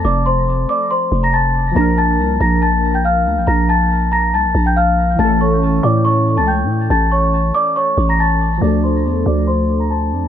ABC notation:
X:1
M:4/4
L:1/16
Q:1/4=140
K:Dm
V:1 name="Celesta"
[dd']2 [cc']4 [dd']2 [cc']3 [bb'] [aa']4 | [bb']2 [aa']4 [bb']2 [aa']3 [gg'] [ff']4 | [bb']2 [aa']4 [bb']2 [aa']3 [gg'] [ff']4 | [aa']2 [^c^c']4 [dd']2 [cc']3 [aa'] [gg']4 |
[aa']2 [^c^c']4 [dd']2 [cc']3 [bb'] [aa']4 | [dd']2 [cc']4 [dd']2 [cc']3 [bb'] [aa']4 |]
V:2 name="Synth keys"
[F,A,CA]16 | [F,B,DB]16- | [F,B,DB]16 | [E,A,^CA]16- |
[E,A,^CA]16 | [F,A,DA]16 |]
V:3 name="808-style bass" clef=bass
F,,,6 z4 F,,,6 | B,,,4 C,,2 B,,,8 D,, B,,, | B,,,8 C,, B,,, B,,,6 | A,,,6 A,,4- A,, ^C,,2- C,,/2 A,,2- A,,/2 |
A,,,6 z4 A,,,6 | D,,4 E,,2 D,,8 F,, D,, |]